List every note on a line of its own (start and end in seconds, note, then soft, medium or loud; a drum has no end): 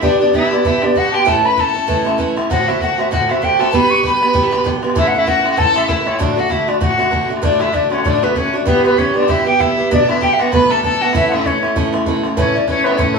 0.01 0.19 G3 medium
0.01 0.20 B3 medium
0.01 0.18 D4 medium
0.01 0.19 D4 medium
0.01 0.18 G4 medium
0.01 0.20 D5 loud
0.01 bodhran medium
0.19 0.33 B3 soft
0.19 0.32 D4 medium
0.19 0.33 D4 medium
0.19 0.33 G4 medium
0.19 0.37 D5 medium
0.32 0.51 G3 medium
0.32 0.51 B3 medium
0.32 0.51 D4 medium
0.32 0.61 E4 medium
0.32 0.50 G4 medium
0.32 0.52 E5 medium
0.32 bodhran medium
0.51 0.64 B3 soft
0.51 0.64 D4 soft
0.51 0.64 G4 medium
0.51 0.69 D5 medium
0.51 bodhran medium
0.64 0.82 G3 medium
0.64 0.82 B3 medium
0.64 0.82 D4 medium
0.64 0.83 E4 medium
0.64 0.81 G4 medium
0.64 0.86 E5 medium
0.64 bodhran medium
0.82 0.95 B3 soft
0.82 0.95 D4 medium
0.82 0.95 D4 soft
0.82 0.95 G4 medium
0.82 1.00 D5 medium
0.82 bodhran soft
0.95 1.13 G3 medium
0.95 1.13 B3 medium
0.95 1.12 D4 medium
0.95 1.15 F#4 medium
0.95 1.11 G4 medium
0.95 1.10 F#5 medium
0.95 bodhran medium
1.11 1.26 B3 soft
1.11 1.26 D4 soft
1.11 1.26 G4 soft
1.11 1.26 G4 medium
1.11 1.17 A5 medium
1.11 bodhran medium
1.15 1.30 G5 medium
1.20 bodhran soft
1.25 1.43 A2 medium
1.25 1.43 E3 medium
1.25 1.43 A3 medium
1.25 1.43 C#4 medium
1.25 1.41 E4 medium
1.25 1.34 A4 medium
1.25 1.47 A5 medium
1.25 bodhran medium
1.42 1.56 A3 soft
1.42 1.57 C#4 soft
1.42 1.56 E4 soft
1.42 1.61 B4 medium
1.42 1.62 B5 medium
1.56 1.74 E3 medium
1.56 1.75 A3 medium
1.56 1.73 C#4 medium
1.56 1.72 E4 medium
1.56 2.20 A4 medium
1.56 bodhran medium
1.60 2.20 A5 medium
1.73 1.87 A3 soft
1.73 1.87 C#4 soft
1.73 1.87 E4 soft
1.87 2.05 A2 medium
1.87 2.05 E3 medium
1.87 2.05 A3 medium
1.87 2.04 C#4 medium
1.87 2.03 E4 medium
1.87 bodhran medium
2.04 2.17 A3 soft
2.04 2.18 C#4 soft
2.04 2.18 E4 medium
2.04 bodhran medium
2.18 2.36 E3 medium
2.18 2.36 A3 medium
2.18 2.36 C#4 medium
2.18 2.35 E4 medium
2.18 bodhran medium
2.36 2.50 A3 soft
2.36 2.50 C#4 soft
2.36 2.50 E4 medium
2.36 bodhran medium
2.50 2.67 D2 medium
2.50 2.67 A2 medium
2.50 2.68 D3 medium
2.50 2.67 A3 medium
2.50 2.68 C4 medium
2.50 2.70 F#4 medium
2.50 2.67 F#4 medium
2.50 2.70 F#5 medium
2.50 bodhran medium
2.68 2.80 D3 soft
2.68 2.81 A3 soft
2.68 2.81 C4 soft
2.68 2.82 E4 medium
2.68 2.81 F#4 soft
2.68 2.81 E5 medium
2.80 2.98 D3 medium
2.80 2.97 A3 medium
2.80 2.98 C4 medium
2.80 3.11 F#4 medium
2.80 2.97 F#4 medium
2.80 2.98 F#5 medium
2.80 bodhran medium
2.98 3.11 D3 soft
2.98 3.11 A3 soft
2.98 3.11 C4 soft
2.98 3.11 F#4 soft
2.98 3.11 E5 medium
2.98 bodhran medium
3.11 3.29 D2 medium
3.11 3.29 A2 medium
3.11 3.29 D3 medium
3.11 3.29 A3 medium
3.11 3.29 C4 medium
3.11 3.30 F#4 medium
3.11 3.28 F#4 medium
3.11 3.32 F#5 medium
3.11 bodhran medium
3.29 3.40 D3 soft
3.29 3.42 A3 soft
3.29 3.41 C4 soft
3.29 3.44 E4 medium
3.29 3.42 F#4 medium
3.29 3.46 E5 medium
3.29 bodhran medium
3.42 3.59 D3 medium
3.42 3.59 A3 medium
3.42 3.59 C4 medium
3.42 3.58 F#4 medium
3.42 3.61 G4 medium
3.42 3.62 G5 medium
3.42 bodhran medium
3.59 3.72 D3 soft
3.59 3.73 A3 soft
3.59 3.73 C4 soft
3.59 3.73 F#4 medium
3.59 3.76 A4 medium
3.59 3.73 A5 medium
3.59 bodhran medium
3.73 3.90 G3 medium
3.73 3.90 B3 medium
3.73 3.90 D4 medium
3.73 3.89 G4 medium
3.73 4.04 B4 loud
3.73 3.92 B5 loud
3.73 bodhran medium
3.90 4.02 B3 soft
3.90 4.03 D4 soft
3.90 4.04 G4 medium
3.90 4.04 C#6 medium
4.03 4.21 G3 medium
4.03 4.21 B3 medium
4.03 4.20 D4 medium
4.03 4.19 G4 medium
4.03 4.24 B4 medium
4.03 4.62 B5 medium
4.03 bodhran medium
4.20 4.33 B3 soft
4.20 4.33 D4 soft
4.20 4.34 G4 soft
4.20 4.27 C#5 soft
4.20 bodhran medium
4.25 4.44 B4 medium
4.33 4.51 G3 medium
4.33 4.52 B3 medium
4.33 4.51 D4 medium
4.33 4.50 G4 medium
4.33 bodhran medium
4.43 4.48 A4 soft
4.43 4.66 B4 medium
4.51 4.64 B3 medium
4.51 4.65 D4 medium
4.51 4.65 G4 medium
4.51 bodhran medium
4.64 4.82 G3 medium
4.64 4.83 B3 medium
4.64 4.82 D4 medium
4.64 4.81 G4 medium
4.64 bodhran medium
4.82 4.95 B3 soft
4.82 4.96 D4 soft
4.82 4.96 G4 soft
4.82 bodhran medium
4.90 bodhran medium
4.95 5.13 A2 medium
4.95 5.13 E3 medium
4.95 5.14 A3 medium
4.95 5.13 C#4 medium
4.95 5.12 E4 medium
4.95 5.07 E4 medium
4.95 5.09 E5 loud
4.95 bodhran medium
5.08 5.20 F#5 medium
5.13 5.26 A3 soft
5.13 5.27 C#4 soft
5.13 5.27 E4 medium
5.18 5.29 E4 medium
5.18 5.28 E5 loud
5.26 5.44 E3 medium
5.26 5.44 A3 medium
5.26 5.43 C#4 medium
5.26 5.42 E4 medium
5.26 5.50 F#4 medium
5.26 5.50 F#5 medium
5.26 bodhran medium
5.43 5.56 A3 soft
5.43 5.56 C#4 soft
5.43 5.57 E4 soft
5.43 bodhran medium
5.51 5.57 F#4 medium
5.51 5.60 F#5 medium
5.56 5.75 A2 medium
5.56 5.75 E3 medium
5.56 5.75 A3 medium
5.56 5.74 C#4 medium
5.56 5.73 E4 medium
5.56 5.90 A4 loud
5.56 5.76 A5 loud
5.56 bodhran medium
5.74 5.87 A3 soft
5.74 5.88 C#4 soft
5.74 5.88 E4 medium
5.74 5.88 E5 medium
5.74 bodhran medium
5.88 6.06 E3 medium
5.88 6.06 A3 medium
5.88 6.05 C#4 medium
5.88 6.19 E4 medium
5.88 6.04 E4 medium
5.88 6.09 E5 medium
5.88 bodhran medium
6.05 6.18 A3 soft
6.05 6.19 C#4 soft
6.05 6.19 E4 medium
6.05 6.22 C#5 medium
6.05 bodhran medium
6.14 bodhran medium
6.19 6.37 D2 medium
6.19 6.37 A2 medium
6.19 6.36 D3 medium
6.19 6.36 A3 medium
6.19 6.35 D4 medium
6.19 6.39 D4 medium
6.19 6.34 F#4 medium
6.19 6.41 D5 medium
6.19 bodhran medium
6.36 6.48 D3 soft
6.36 6.49 A3 soft
6.36 6.49 D4 soft
6.36 6.50 F#4 soft
6.36 6.51 F#4 medium
6.40 6.53 F#5 medium
6.49 6.68 D3 medium
6.49 6.67 A3 medium
6.49 6.67 D4 medium
6.49 6.70 E4 medium
6.49 6.66 F#4 medium
6.49 6.70 E5 medium
6.49 bodhran medium
6.67 6.80 D3 soft
6.67 6.80 A3 soft
6.67 6.80 D4 soft
6.67 6.81 D4 medium
6.67 6.81 F#4 soft
6.67 6.81 D5 medium
6.67 bodhran medium
6.80 6.99 D2 medium
6.80 6.99 A2 medium
6.80 6.99 D3 medium
6.80 6.98 A3 medium
6.80 6.98 D4 medium
6.80 7.27 F#4 medium
6.80 6.97 F#4 medium
6.80 7.27 F#5 medium
6.80 bodhran medium
6.98 7.09 D3 soft
6.98 7.10 A3 soft
6.98 7.11 D4 soft
6.98 7.11 F#4 medium
6.98 bodhran medium
7.10 7.29 D3 medium
7.10 7.29 A3 medium
7.10 7.28 D4 medium
7.10 7.27 F#4 medium
7.10 bodhran medium
7.28 7.42 D3 soft
7.28 7.42 A3 soft
7.28 7.42 D4 soft
7.28 7.42 F#4 soft
7.37 bodhran soft
7.42 7.60 D2 medium
7.42 7.61 A2 medium
7.42 7.60 D3 medium
7.42 7.60 A3 medium
7.42 7.59 D4 medium
7.42 7.61 D4 medium
7.42 7.58 F#4 medium
7.42 7.63 D5 medium
7.42 bodhran medium
7.59 7.71 D3 soft
7.59 7.72 A3 soft
7.59 7.73 D4 soft
7.59 7.76 E4 medium
7.59 7.73 F#4 medium
7.59 7.75 E5 medium
7.59 bodhran medium
7.72 7.91 D3 medium
7.72 7.90 A3 medium
7.72 7.89 D4 medium
7.72 7.93 D4 medium
7.72 7.89 F#4 medium
7.72 7.91 D5 medium
7.72 bodhran medium
7.90 8.04 D3 soft
7.90 8.04 A3 soft
7.90 8.05 C#4 medium
7.90 8.05 D4 soft
7.90 8.05 F#4 soft
7.90 8.09 C#5 medium
7.90 bodhran medium
7.99 bodhran medium
8.04 8.22 D2 medium
8.04 8.23 A2 medium
8.04 8.23 D3 medium
8.04 8.22 A3 medium
8.04 8.24 D4 medium
8.04 8.21 D4 medium
8.04 8.21 F#4 medium
8.04 8.25 D5 medium
8.04 bodhran medium
8.22 8.34 D3 soft
8.22 8.35 A3 medium
8.22 8.38 B3 medium
8.22 8.36 D4 medium
8.22 8.36 F#4 medium
8.22 8.37 B4 medium
8.35 8.53 D3 medium
8.35 8.54 A3 medium
8.35 8.55 C#4 medium
8.35 8.53 D4 medium
8.35 8.52 F#4 medium
8.35 8.56 C#5 medium
8.35 bodhran medium
8.53 8.65 D3 soft
8.53 8.66 A3 soft
8.53 8.66 D4 soft
8.53 8.67 D4 medium
8.53 8.67 F#4 soft
8.53 8.69 D5 medium
8.65 8.84 E3 medium
8.65 8.85 G3 medium
8.65 8.84 B3 medium
8.65 8.82 G4 medium
8.65 8.85 B4 medium
8.65 bodhran medium
8.83 8.96 G3 soft
8.83 8.97 B3 soft
8.83 9.00 B3 medium
8.83 8.98 G4 medium
8.83 9.00 B4 medium
8.83 bodhran medium
8.97 9.15 E3 medium
8.97 9.15 G3 medium
8.97 9.14 B3 medium
8.97 9.15 C#4 medium
8.97 9.12 G4 medium
8.97 9.18 C#5 medium
8.97 bodhran medium
9.13 9.27 G3 soft
9.13 9.27 B3 soft
9.13 9.31 D4 medium
9.13 9.28 G4 soft
9.13 9.32 D5 medium
9.13 bodhran medium
9.22 bodhran medium
9.27 9.46 E3 medium
9.27 9.46 G3 medium
9.27 9.45 B3 medium
9.27 9.48 E4 medium
9.27 9.43 G4 medium
9.27 9.46 E5 loud
9.27 bodhran medium
9.45 9.59 G3 soft
9.45 9.59 B3 soft
9.45 9.59 G4 soft
9.45 9.61 G4 medium
9.45 9.62 G5 medium
9.59 9.77 E3 medium
9.59 9.78 G3 medium
9.59 9.77 B3 medium
9.59 9.91 E4 medium
9.59 9.75 G4 medium
9.59 9.94 E5 medium
9.59 bodhran medium
9.77 9.91 G3 soft
9.77 9.90 B3 soft
9.77 9.91 G4 soft
9.91 10.09 B2 medium
9.91 10.09 F#3 medium
9.91 10.08 A3 medium
9.91 10.09 B3 medium
9.91 10.10 D4 medium
9.91 10.07 D4 medium
9.91 10.09 D5 loud
9.91 bodhran medium
10.08 10.21 A3 soft
10.08 10.20 B3 soft
10.08 10.22 D4 soft
10.08 10.24 E4 medium
10.08 10.21 E5 medium
10.08 bodhran medium
10.21 10.39 F#3 medium
10.21 10.38 A3 medium
10.21 10.39 B3 medium
10.21 10.37 D4 medium
10.21 10.41 G4 medium
10.21 10.35 G5 loud
10.21 bodhran medium
10.33 10.42 E5 medium
10.38 10.52 A3 soft
10.38 10.51 B3 soft
10.38 10.52 D4 soft
10.38 10.51 F#4 medium
10.38 10.53 F#5 medium
10.38 bodhran medium
10.46 bodhran medium
10.52 10.70 B2 medium
10.52 10.70 F#3 medium
10.52 10.70 A3 medium
10.52 10.70 B3 medium
10.52 10.68 D4 medium
10.52 10.72 B4 medium
10.52 10.73 B5 loud
10.52 bodhran medium
10.70 10.83 A3 soft
10.70 10.82 B3 medium
10.70 10.83 D4 medium
10.70 10.83 A4 medium
10.70 10.84 A5 medium
10.83 11.01 F#3 medium
10.83 11.01 A3 medium
10.83 11.01 B3 medium
10.83 11.00 D4 medium
10.83 11.02 A4 medium
10.83 11.03 A5 medium
10.83 bodhran medium
11.01 11.14 A3 soft
11.01 11.15 B3 soft
11.01 11.15 D4 soft
11.01 11.15 F#4 medium
11.01 11.15 F#5 medium
11.13 11.32 A2 medium
11.13 11.32 E3 medium
11.13 11.32 A3 medium
11.13 11.32 C#4 medium
11.13 11.31 E4 medium
11.13 11.28 E5 medium
11.13 bodhran medium
11.29 11.45 E4 soft
11.29 11.46 E4 medium
11.29 11.35 F#5 medium
11.29 bodhran medium
11.33 11.45 A3 soft
11.33 11.46 C#4 soft
11.33 11.48 E5 medium
11.44 11.63 E3 medium
11.44 11.63 A3 medium
11.44 11.76 C#4 medium
11.44 11.62 C#4 medium
11.44 11.61 E4 medium
11.44 11.77 C#5 medium
11.44 bodhran medium
11.62 11.75 A3 soft
11.62 11.75 C#4 soft
11.62 11.76 E4 soft
11.62 bodhran medium
11.76 11.93 A2 medium
11.76 11.93 E3 medium
11.76 11.94 A3 medium
11.76 11.93 C#4 medium
11.76 11.91 E4 medium
11.76 bodhran medium
11.93 12.05 A3 soft
11.93 12.07 C#4 medium
11.93 12.06 E4 medium
11.93 bodhran medium
12.06 12.24 E3 medium
12.06 12.24 A3 medium
12.06 12.24 C#4 medium
12.06 12.22 E4 medium
12.06 bodhran medium
12.23 12.36 A3 soft
12.23 12.37 C#4 medium
12.23 12.37 E4 medium
12.23 bodhran medium
12.37 12.55 A2 medium
12.37 12.55 E3 medium
12.37 12.55 A3 medium
12.37 12.66 C#4 medium
12.37 12.54 C#4 medium
12.37 12.53 E4 medium
12.37 12.57 C#5 medium
12.37 bodhran medium
12.54 12.67 A3 soft
12.54 12.68 C#4 soft
12.54 12.68 E4 medium
12.54 12.69 D5 medium
12.67 12.85 E3 medium
12.67 12.85 A3 medium
12.67 12.87 C#4 medium
12.67 12.85 C#4 medium
12.67 12.84 E4 medium
12.67 12.86 C#5 medium
12.67 bodhran medium
12.84 12.97 A3 soft
12.84 13.00 B3 medium
12.84 12.98 C#4 soft
12.84 12.98 E4 soft
12.84 12.95 B4 medium
12.84 bodhran medium
12.92 13.16 C#5 medium
12.92 12.98 D5 medium
12.92 bodhran medium
12.97 13.16 A2 medium
12.97 13.16 E3 medium
12.97 13.16 A3 medium
12.97 13.19 C#4 medium
12.97 13.15 C#4 medium
12.97 13.14 E4 medium
12.97 bodhran medium
13.14 13.19 E4 medium
13.14 13.19 A4 medium